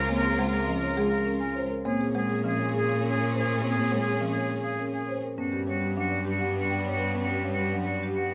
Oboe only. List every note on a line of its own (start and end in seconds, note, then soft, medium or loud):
0.17 0.39 A#4 medium
0.48 0.69 A#4 medium
0.79 1.00 A#4 medium
1.09 1.31 A#4 medium
1.40 1.62 A#4 soft
1.87 2.08 G#4 soft
2.17 2.39 G#4 soft
2.48 2.69 G#4 medium
2.78 2.99 G#4 medium
3.09 3.30 G#4 medium
3.40 3.61 G#4 medium
3.70 3.92 G#4 medium
4.01 4.22 G#4 medium
4.31 4.53 G#4 medium
4.62 4.84 G#4 medium
4.93 5.15 G#4 soft
5.39 5.60 F#4 soft
5.69 5.91 F#4 soft
6.00 6.22 F#4 medium
6.32 6.53 F#4 medium
6.61 6.83 F#4 medium
6.93 7.14 F#4 medium
7.24 7.45 F#4 medium
7.54 7.75 F#4 medium
7.86 8.07 F#4 soft
8.15 8.34 F#4 soft